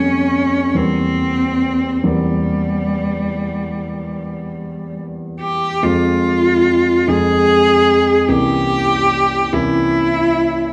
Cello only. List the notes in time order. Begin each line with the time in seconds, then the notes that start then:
Already playing: C#4
0.76 C4
2.03 G3
5.41 G4
5.84 F4
7.09 G#4
8.29 G4
9.54 E4